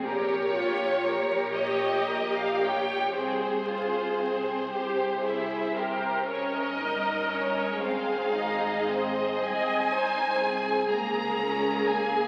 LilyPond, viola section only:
\new Staff \with { instrumentName = "Viola section" } { \time 6/8 \key c \phrygian \tempo 4. = 39 g'8 f'8 g'2 | aes'4. g'8 aes'8 bes'8 | \key aes \major bes'4. aes'4. | ees''8 c''8 aes'2 | }